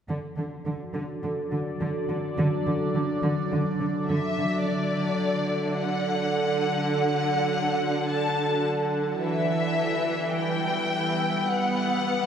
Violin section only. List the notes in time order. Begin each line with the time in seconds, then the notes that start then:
4.09 E5
4.66 D5
5.80 F#5
6.94 F#5
8.09 A5
9.23 E5
10.37 G5
11.52 F#5